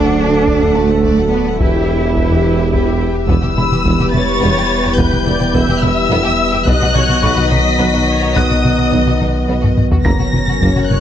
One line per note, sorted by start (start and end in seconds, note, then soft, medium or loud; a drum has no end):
0.00 1.61 D1 medium
0.00 1.44 D2 medium
0.00 1.60 D2 medium
0.00 1.56 F#3 medium
0.00 0.74 D4 loud
0.00 1.61 D4 medium
0.00 1.60 F#4 medium
0.00 1.56 A4 medium
0.00 1.60 A4 medium
0.00 0.71 E6 medium
0.05 0.20 A4 medium
0.05 0.19 F#5 medium
0.18 0.34 F#4 soft
0.18 0.33 D5 medium
0.18 0.33 A5 medium
0.32 0.48 A4 soft
0.32 0.47 F#5 medium
0.46 0.61 F#4 medium
0.46 0.60 D5 soft
0.46 0.60 A5 medium
0.46 taiko medium
0.61 0.76 A4 soft
0.61 0.76 F#5 medium
0.61 0.76 F#5 soft
0.61 taiko low soft
0.75 1.32 A3 medium
0.75 0.90 F#4 medium
0.75 0.89 D5 medium
0.75 0.89 A5 medium
0.75 2.40 A5 soft
0.88 1.04 A4 medium
0.88 1.03 F#5 medium
0.88 1.04 F#5 soft
1.04 1.17 F#4 soft
1.04 1.17 D5 medium
1.04 1.17 A5 medium
1.04 taiko medium
1.18 1.32 A4 soft
1.18 1.32 F#5 soft
1.31 1.59 B3 medium
1.31 1.47 F#4 soft
1.31 1.46 D5 soft
1.31 1.46 A5 soft
1.45 1.61 A4 soft
1.45 1.60 F#5 soft
1.59 3.29 E1 medium
1.59 3.06 E1 medium
1.59 3.06 E2 medium
1.59 3.28 E3 medium
1.59 3.28 B3 medium
1.59 2.98 E4 medium
1.59 1.73 E4 medium
1.59 2.84 G4 medium
1.59 3.28 G4 medium
1.59 1.73 B4 medium
1.59 3.28 B4 medium
1.59 1.74 G5 medium
1.59 taiko medium
1.74 1.88 G4 soft
1.74 1.89 G4 soft
1.74 1.89 E5 soft
1.88 2.03 E4 soft
1.88 2.02 B4 soft
1.88 2.02 G5 soft
2.01 2.16 G4 soft
2.01 2.17 G4 soft
2.01 2.17 E5 soft
2.15 2.30 E4 soft
2.15 2.29 B4 soft
2.15 2.30 G5 soft
2.15 taiko medium
2.30 2.44 G4 soft
2.30 2.45 G4 soft
2.30 2.45 E5 soft
2.30 taiko low soft
2.43 2.59 E4 soft
2.43 2.58 B4 medium
2.43 2.59 G5 medium
2.58 2.72 G4 soft
2.58 2.73 G4 soft
2.58 2.72 E5 soft
2.72 2.86 E4 soft
2.72 2.85 B4 soft
2.72 2.86 G5 soft
2.72 taiko medium
2.86 3.00 G4 soft
2.86 3.01 G4 soft
2.86 3.01 E5 soft
3.00 3.15 E4 soft
3.00 3.15 B4 soft
3.00 3.15 G5 soft
3.15 3.29 G4 soft
3.15 3.29 E5 medium
3.28 3.35 E1 medium
3.28 6.69 E1 medium
3.28 3.35 E1 medium
3.28 3.35 E2 medium
3.28 6.63 E3 medium
3.28 6.63 G3 medium
3.28 3.34 B3 medium
3.28 6.63 B3 medium
3.28 6.63 E4 medium
3.28 6.63 G4 medium
3.28 6.63 B4 medium
3.28 4.09 E6 medium
3.28 taiko loud
3.43 3.49 E2 medium
3.43 3.49 G4 soft
3.43 taiko mid medium
3.57 3.63 E1 medium
3.57 3.63 E2 medium
3.57 3.62 E4 medium
3.57 5.23 B5 soft
3.57 taiko mid medium
3.71 3.77 E2 medium
3.71 3.77 G4 medium
3.71 taiko mid medium
3.85 3.91 E1 medium
3.85 3.91 E2 medium
3.85 3.91 B3 medium
3.85 taiko medium
4.00 4.05 E2 medium
4.00 4.05 G4 medium
4.00 taiko mid medium
4.12 4.19 E1 medium
4.12 4.20 E2 medium
4.12 4.19 E4 medium
4.12 4.94 C#5 medium
4.12 4.96 A6 loud
4.12 taiko mid medium
4.40 4.47 E1 medium
4.40 4.48 E2 medium
4.40 4.46 B3 medium
4.56 4.62 E2 medium
4.56 4.61 G4 medium
4.84 4.91 E2 medium
4.84 4.89 G4 medium
4.97 5.03 E1 loud
4.97 5.04 E1 medium
4.97 5.05 E2 medium
4.97 5.03 B3 medium
4.97 5.27 B4 medium
4.97 5.82 G6 medium
4.97 taiko loud
5.11 5.18 E2 medium
5.11 5.17 G4 medium
5.11 taiko mid medium
5.25 5.32 E1 medium
5.25 5.32 E2 medium
5.25 5.31 E4 medium
5.25 5.54 D5 medium
5.25 taiko mid medium
5.39 5.46 E2 medium
5.39 5.45 G4 medium
5.39 taiko mid medium
5.54 5.60 E1 medium
5.54 5.60 E2 medium
5.54 5.59 B3 medium
5.54 6.68 E5 medium
5.54 taiko medium
5.68 5.74 E2 medium
5.68 5.74 G4 medium
5.68 taiko mid medium
5.82 5.88 E1 medium
5.82 5.89 E2 medium
5.82 5.88 E4 medium
5.82 6.67 E6 loud
5.82 taiko mid medium
6.11 6.16 E1 loud
6.11 6.17 E2 medium
6.11 6.16 B3 loud
6.24 6.32 E2 medium
6.24 6.30 G4 medium
6.52 6.60 E2 medium
6.52 6.58 G4 medium
6.66 6.72 B1 loud
6.66 6.73 B1 medium
6.66 10.06 B1 medium
6.66 6.73 B2 medium
6.66 10.05 D#3 medium
6.66 9.78 F#3 medium
6.66 6.72 B3 medium
6.66 10.01 B3 medium
6.66 9.77 D#4 medium
6.66 10.04 F#4 medium
6.66 10.01 B4 medium
6.66 9.80 D#5 medium
6.66 6.95 D#5 medium
6.66 7.51 F#6 loud
6.66 taiko loud
6.81 6.88 B2 medium
6.81 6.87 F#4 medium
6.81 taiko mid medium
6.95 7.01 B1 medium
6.95 7.02 B2 medium
6.95 7.01 D#4 medium
6.95 7.24 C#5 medium
6.95 taiko mid medium
7.09 7.16 B2 medium
7.09 7.15 F#4 medium
7.09 taiko mid medium
7.23 7.29 B1 medium
7.23 7.30 B2 medium
7.23 7.28 B3 medium
7.23 7.51 B4 medium
7.23 8.88 C#6 medium
7.23 taiko medium
7.36 7.44 B2 medium
7.36 7.42 F#4 medium
7.36 taiko mid medium
7.51 7.57 B1 medium
7.51 7.58 B1 medium
7.51 7.59 B2 medium
7.51 7.56 D#4 medium
7.51 7.79 D#5 medium
7.51 8.34 B6 loud
7.51 taiko mid medium
7.79 7.85 B1 medium
7.79 7.86 B1 medium
7.79 7.86 B2 medium
7.79 7.85 B3 medium
7.79 8.08 B4 medium
7.93 8.01 B2 medium
7.93 7.99 F#4 medium
8.07 8.35 C#5 medium
8.21 8.29 B2 medium
8.21 8.27 F#4 medium
8.35 8.42 B1 medium
8.35 8.43 B2 medium
8.35 8.41 B3 medium
8.35 9.63 D#5 medium
8.35 10.02 F#5 soft
8.35 9.20 D#6 medium
8.35 10.01 F#6 soft
8.35 taiko loud
8.48 8.57 B2 soft
8.48 8.54 F#4 soft
8.48 taiko mid medium
8.62 8.70 B1 medium
8.62 8.70 B2 medium
8.62 8.68 D#4 medium
8.62 taiko mid medium
8.77 8.83 B2 medium
8.77 8.83 F#4 medium
8.77 taiko mid soft
8.91 8.98 B1 medium
8.91 8.98 B2 medium
8.91 8.97 B3 medium
8.91 taiko medium
9.06 9.12 B2 medium
9.06 9.12 F#4 medium
9.06 taiko mid soft
9.20 9.26 B1 medium
9.20 9.26 B1 soft
9.20 9.26 B2 medium
9.20 9.26 D#4 medium
9.20 taiko mid medium
9.48 9.54 B1 medium
9.48 9.54 B2 medium
9.48 9.54 B3 medium
9.62 9.69 B2 medium
9.62 9.68 F#4 soft
9.62 taiko low-mid medium
9.78 taiko low-mid medium
9.92 9.97 B2 medium
9.92 9.97 F#4 medium
9.92 taiko low medium
10.03 10.11 F#1 medium
10.03 11.00 F#1 medium
10.03 10.11 F#1 medium
10.03 10.11 F#2 medium
10.03 11.00 F#3 medium
10.03 10.11 A#3 medium
10.03 11.00 C#4 medium
10.03 11.00 F#4 medium
10.03 11.00 A#4 medium
10.03 11.00 C#5 medium
10.03 11.00 A#5 soft
10.03 10.85 A#6 medium
10.03 11.00 A#6 soft
10.03 taiko loud
10.19 10.25 F#2 medium
10.19 10.25 F#4 soft
10.19 taiko mid medium
10.33 10.39 F#1 medium
10.33 10.39 F#1 soft
10.33 10.39 F#2 medium
10.33 10.39 C#4 medium
10.33 taiko mid medium
10.48 10.54 F#2 medium
10.48 10.54 F#4 medium
10.48 taiko mid medium
10.61 10.67 F#1 medium
10.61 10.67 F#2 medium
10.61 10.69 A#3 medium
10.61 taiko medium
10.76 10.81 F#2 medium
10.76 10.82 F#4 medium
10.76 taiko mid soft
10.88 10.95 F#1 medium
10.88 10.96 F#1 medium
10.88 10.95 F#2 medium
10.88 10.96 C#4 medium
10.88 11.00 C#5 medium
10.88 11.00 F#6 medium
10.88 taiko mid medium